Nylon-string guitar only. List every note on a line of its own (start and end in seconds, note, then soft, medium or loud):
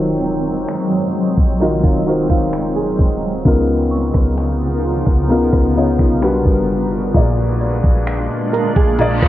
1.61 1.84 D#4 medium
1.84 2.06 F4 medium
2.07 2.29 F#4 medium
2.30 2.74 F4 medium
2.76 3.42 G#4 medium
8.53 8.75 A#4 medium
8.76 9.20 G#4 medium
9.22 9.28 F4 medium